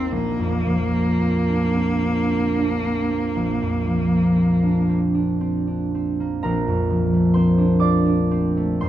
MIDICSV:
0, 0, Header, 1, 3, 480
1, 0, Start_track
1, 0, Key_signature, -2, "major"
1, 0, Tempo, 1104972
1, 49, Time_signature, 12, 3, 24, 8
1, 1008, Tempo, 1034483
1, 2928, Tempo, 931677
1, 3888, Tempo, 1029160
1, 4153, End_track
2, 0, Start_track
2, 0, Title_t, "Harp"
2, 0, Program_c, 0, 46
2, 0, Note_on_c, 0, 32, 33
2, 0, Note_on_c, 0, 39, 30
2, 0, Note_on_c, 0, 54, 31
2, 0, Note_on_c, 0, 58, 31
2, 0, Note_on_c, 0, 60, 32
2, 0, Note_on_c, 0, 63, 30
2, 49, Note_on_c, 0, 34, 38
2, 68, Note_off_c, 0, 39, 0
2, 69, Note_off_c, 0, 32, 0
2, 69, Note_off_c, 0, 54, 0
2, 70, Note_off_c, 0, 63, 0
2, 170, Note_on_c, 0, 41, 31
2, 289, Note_on_c, 0, 53, 33
2, 403, Note_off_c, 0, 58, 0
2, 408, Note_on_c, 0, 58, 30
2, 523, Note_off_c, 0, 60, 0
2, 528, Note_on_c, 0, 60, 33
2, 647, Note_on_c, 0, 62, 31
2, 762, Note_off_c, 0, 60, 0
2, 767, Note_on_c, 0, 60, 29
2, 881, Note_off_c, 0, 62, 0
2, 886, Note_on_c, 0, 62, 32
2, 1000, Note_off_c, 0, 60, 0
2, 1005, Note_on_c, 0, 60, 32
2, 1126, Note_off_c, 0, 62, 0
2, 1132, Note_on_c, 0, 62, 33
2, 1248, Note_off_c, 0, 60, 0
2, 1254, Note_on_c, 0, 60, 31
2, 1367, Note_off_c, 0, 58, 0
2, 1372, Note_on_c, 0, 58, 31
2, 1485, Note_off_c, 0, 34, 0
2, 1490, Note_on_c, 0, 34, 33
2, 1603, Note_off_c, 0, 41, 0
2, 1608, Note_on_c, 0, 41, 27
2, 1720, Note_off_c, 0, 53, 0
2, 1726, Note_on_c, 0, 53, 32
2, 1836, Note_off_c, 0, 58, 0
2, 1842, Note_on_c, 0, 58, 32
2, 1958, Note_off_c, 0, 60, 0
2, 1963, Note_on_c, 0, 60, 31
2, 2077, Note_off_c, 0, 62, 0
2, 2082, Note_on_c, 0, 62, 30
2, 2194, Note_off_c, 0, 60, 0
2, 2200, Note_on_c, 0, 60, 33
2, 2312, Note_off_c, 0, 62, 0
2, 2317, Note_on_c, 0, 62, 27
2, 2435, Note_off_c, 0, 60, 0
2, 2440, Note_on_c, 0, 60, 35
2, 2557, Note_off_c, 0, 62, 0
2, 2562, Note_on_c, 0, 62, 30
2, 2685, Note_off_c, 0, 60, 0
2, 2690, Note_on_c, 0, 60, 30
2, 2803, Note_off_c, 0, 58, 0
2, 2809, Note_on_c, 0, 58, 29
2, 2914, Note_on_c, 0, 82, 67
2, 2916, Note_off_c, 0, 34, 0
2, 2919, Note_on_c, 0, 70, 48
2, 2921, Note_on_c, 0, 34, 46
2, 2946, Note_off_c, 0, 41, 0
2, 3039, Note_on_c, 0, 41, 34
2, 3151, Note_off_c, 0, 53, 0
2, 3158, Note_on_c, 0, 53, 35
2, 3277, Note_on_c, 0, 57, 33
2, 3381, Note_on_c, 0, 84, 63
2, 3386, Note_off_c, 0, 60, 0
2, 3388, Note_on_c, 0, 72, 47
2, 3393, Note_on_c, 0, 60, 41
2, 3499, Note_off_c, 0, 62, 0
2, 3505, Note_on_c, 0, 62, 37
2, 3618, Note_on_c, 0, 86, 60
2, 3625, Note_on_c, 0, 74, 50
2, 3627, Note_on_c, 0, 65, 37
2, 3742, Note_off_c, 0, 62, 0
2, 3748, Note_on_c, 0, 62, 37
2, 3877, Note_off_c, 0, 60, 0
2, 3883, Note_on_c, 0, 60, 41
2, 3998, Note_off_c, 0, 57, 0
2, 4004, Note_on_c, 0, 57, 39
2, 4109, Note_off_c, 0, 84, 0
2, 4114, Note_off_c, 0, 72, 0
2, 4114, Note_on_c, 0, 84, 67
2, 4117, Note_off_c, 0, 41, 0
2, 4120, Note_on_c, 0, 72, 53
2, 4123, Note_on_c, 0, 41, 39
2, 4153, Note_off_c, 0, 34, 0
2, 4153, Note_off_c, 0, 41, 0
2, 4153, Note_off_c, 0, 53, 0
2, 4153, Note_off_c, 0, 57, 0
2, 4153, Note_off_c, 0, 58, 0
2, 4153, Note_off_c, 0, 60, 0
2, 4153, Note_off_c, 0, 62, 0
2, 4153, Note_off_c, 0, 65, 0
2, 4153, Note_off_c, 0, 70, 0
2, 4153, Note_off_c, 0, 72, 0
2, 4153, Note_off_c, 0, 74, 0
2, 4153, Note_off_c, 0, 82, 0
2, 4153, Note_off_c, 0, 84, 0
2, 4153, Note_off_c, 0, 86, 0
2, 4153, End_track
3, 0, Start_track
3, 0, Title_t, "Cello"
3, 0, Program_c, 1, 42
3, 0, Note_on_c, 1, 60, 52
3, 50, Note_on_c, 1, 58, 55
3, 57, Note_off_c, 1, 60, 0
3, 2207, Note_off_c, 1, 58, 0
3, 4153, End_track
0, 0, End_of_file